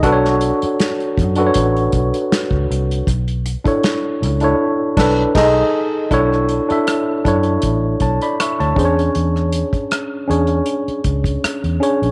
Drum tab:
CC |----------------|----------x-x---|----------------|----------------|
HH |x-xxxxxxxxxxx-xx|xxxxx-xx--------|x-xxx-xxx-xxxxxx|x-xxx-xxxxxxxxxx|
SD |-o--o-------o---|----o-----o-o---|-r--r-------r---|-r--r-------r---|
BD |o-----o-o-o--o--|o--o------o-o---|o-----o-o-o---o-|---o------oo----|